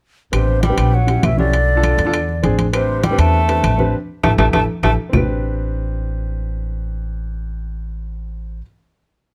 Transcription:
0.32 upright bass A1, tenor saxophone C3, grand piano B3 C4 D4 G4, flute C5, high conga, high timbale, claves
0.48 high conga
0.63 tenor saxophone G3, flute G5, high conga, high timbale
0.69 grand piano B3 C4 D4 G4
0.78 upright bass A#1, high conga, high timbale, claves
0.93 tenor saxophone F#3, flute F#5, high conga
1.07 grand piano C#4 E4 G4, high conga, high timbale
1.23 upright bass B1, tenor saxophone E3, flute E5, high conga, high timbale, low timbale, claves
1.37 tenor saxophone D3, grand piano C#4 E4 G4, flute D5, high conga
1.53 high conga, high timbale
1.69 high conga
1.75 grand piano D4 F4 A4
1.83 high conga, high timbale, claves
1.98 upright bass E2, high conga, high timbale
2.05 grand piano D4 F4 A4
2.14 high conga, high timbale, claves
2.29 high conga
2.43 upright bass A1, grand piano C4 D4 G#4, high conga, high timbale
2.59 high conga, high timbale
2.73 tenor saxophone C3, grand piano C4 D4 G4 B4, flute C5, high conga, high timbale, claves
2.89 high conga
3.04 tenor saxophone G3, flute G5, high conga, high timbale
3.11 grand piano C4 D4 G4 B4
3.18 upright bass E2, tenor saxophone A3, flute A5, high conga, high timbale, claves
3.34 high conga
3.48 grand piano C4 D4 G4 B4, high conga, high timbale
3.63 upright bass A1, high conga, high timbale, claves
3.78 grand piano C4 D4 G4 B4, high conga
4.23 upright bass A1, tenor saxophone A3, grand piano E4 G4 A4, flute A5, high conga, high timbale, claves
4.38 upright bass A1, tenor saxophone A3, grand piano E4 G4 A4, flute A5, high conga, high timbale, claves
4.53 tenor saxophone A3, grand piano E4 G4 A4, flute A5, high conga, high timbale, claves
4.83 upright bass A1, tenor saxophone A3, grand piano E4 G4 A4, flute A5, high conga, high timbale, claves
5.09 upright bass A1, grand piano C4 D4, low timbale, claves
5.13 grand piano G4 B4, low conga

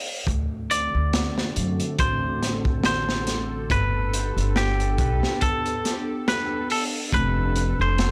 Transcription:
0.27 upright bass D2, ambient pad D3 A3 C4 F#4, synth drone A4, kick, closed hi-hat
0.71 clean electric guitar D5, closed hi-hat
0.95 upright bass D2
1.13 snare, closed hi-hat
1.38 snare
1.56 upright bass F#2, closed hi-hat
1.80 closed hi-hat
1.99 upright bass A1, clean electric guitar C5, kick, closed hi-hat
2.42 snare, closed hi-hat
2.65 kick
2.84 clean electric guitar C5, snare, closed hi-hat
3.09 snare
3.27 snare, closed hi-hat
3.70 upright bass G1, ambient pad B3 D4 G4, clean electric guitar B4, kick, closed hi-hat
4.14 closed hi-hat
4.37 upright bass G1, closed hi-hat
4.56 clean electric guitar G4, snare, closed hi-hat
4.80 closed hi-hat
4.98 upright bass B1, kick, closed hi-hat
5.23 snare
5.41 clean electric guitar A4, kick, closed hi-hat
5.66 closed hi-hat
5.85 snare, closed hi-hat
6.28 clean electric guitar B4, snare, closed hi-hat
6.70 clean electric guitar A4, open hi-hat
7.13 upright bass F1, ambient pad F3 C4 A4, clean electric guitar B4, kick, closed hi-hat
7.56 closed hi-hat
7.80 upright bass F1, clean electric guitar C5
7.98 snare, closed hi-hat

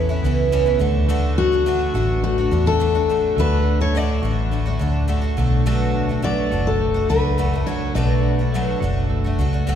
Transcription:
Already playing: fingered electric bass E2, clean electric guitar E3 B3 C#4, steel-string acoustic guitar A4
0.09 twelve-string acoustic guitar B3 C#4 E4
0.24 fingered electric bass C#2, twelve-string acoustic guitar E3 B3 C#4 E4
0.52 twelve-string acoustic guitar A2 E3 B3 C#4 E4
0.66 twelve-string acoustic guitar B3 C#4 E4
0.79 fingered electric bass D2, twelve-string acoustic guitar D3 A3 D4 F#4
1.09 twelve-string acoustic guitar D3 A3 D4 F#4
1.38 clean electric guitar D4, steel-string acoustic guitar F#4
1.52 twelve-string acoustic guitar A3 D4 F#4
1.66 twelve-string acoustic guitar D3 A3 D4 F#4
1.94 fingered electric bass A1, twelve-string acoustic guitar D3 A3 D4 F#4, steel-string acoustic guitar F#4
2.23 clean electric guitar A3, steel-string acoustic guitar F#4
2.38 twelve-string acoustic guitar A3 D4 F#4
2.51 fingered electric bass E2, twelve-string acoustic guitar D3 A3 D4 F#4
2.66 twelve-string acoustic guitar A3 D4 F#4, steel-string acoustic guitar A4
2.80 twelve-string acoustic guitar D3 A3 D4 F#4
2.95 twelve-string acoustic guitar A3 D4 F#4
3.09 twelve-string acoustic guitar D3 A3 D4 F#4
3.37 fingered electric bass D2, twelve-string acoustic guitar D3 A3 D4 F#4, steel-string acoustic guitar B4
3.65 clean electric guitar D4
3.81 twelve-string acoustic guitar A3 D4 F#4, steel-string acoustic guitar C#5
3.95 twelve-string acoustic guitar D3 A3 D4 F#4, steel-string acoustic guitar D5
4.23 fingered electric bass A1, twelve-string acoustic guitar D3 A3 D4 F#4
4.52 twelve-string acoustic guitar D3 A3 D4 F#4
4.66 twelve-string acoustic guitar A3 D4 F#4
4.79 fingered electric bass D2, twelve-string acoustic guitar D3 A3 D4 F#4
5.08 twelve-string acoustic guitar D3 A3 D4 F#4
5.22 twelve-string acoustic guitar A3 D4 F#4
5.37 fingered electric bass B1, twelve-string acoustic guitar F#3 A3 D4 F#4
5.66 twelve-string acoustic guitar B2 F#3 A3 D4 F#4
5.95 clean electric guitar D4
6.09 twelve-string acoustic guitar A3 D4 F#4
6.22 twelve-string acoustic guitar B2 F#3 A3 D4 F#4, steel-string acoustic guitar D5
6.52 fingered electric bass F#1, twelve-string acoustic guitar F#3 A3 D4 F#4
6.67 steel-string acoustic guitar A4
6.81 clean electric guitar A3
6.94 twelve-string acoustic guitar A3 D4 F#4
7.09 fingered electric bass C#2, twelve-string acoustic guitar F#3 A3 D4 F#4, steel-string acoustic guitar B4
7.38 twelve-string acoustic guitar B2 F#3 A3 D4 F#4
7.53 twelve-string acoustic guitar A3 D4 F#4
7.67 twelve-string acoustic guitar F#3 A3 D4 F#4, steel-string acoustic guitar C#5
7.95 fingered electric bass B1, twelve-string acoustic guitar B2 F#3 A3 D4 F#4, steel-string acoustic guitar D5
8.23 clean electric guitar D4
8.39 twelve-string acoustic guitar A3 D4 F#4
8.54 twelve-string acoustic guitar B2 F#3 A3 D4 F#4
8.81 fingered electric bass F#1, twelve-string acoustic guitar F#3 A3 D4 F#4
9.10 clean electric guitar A3
9.24 twelve-string acoustic guitar A3 D4 F#4
9.38 fingered electric bass C#2, twelve-string acoustic guitar F#3 A3 D4 F#4
9.53 twelve-string acoustic guitar A3 D4 F#4
9.67 twelve-string acoustic guitar B2 F#3 A3 D4 F#4

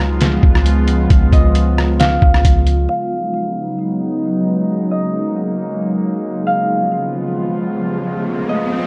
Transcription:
Already playing: 808-style bass C#2, ambient pad C#3 F3 G#3 B3 F4, harp F5
0.21 snare, closed hi-hat
0.43 808-style bass C#2, kick
0.55 cross-stick
0.66 closed hi-hat
0.88 closed hi-hat
1.10 808-style bass C#2, kick, closed hi-hat
1.32 808-style bass C#2, harp D#5, kick, closed hi-hat
1.55 closed hi-hat
1.78 cross-stick
1.99 harp F5, snare, closed hi-hat
2.22 808-style bass C#2, kick
2.34 cross-stick
2.45 808-style bass C#2, kick, closed hi-hat
2.67 closed hi-hat
2.89 ambient pad C#3 F#3 G#3 B3 D#4, harp F5
4.68 ambient pad A#3
4.91 harp D#5
6.47 ambient pad F3 B3 F4, harp F5, riser
8.27 ambient pad C#4
8.49 harp D#5

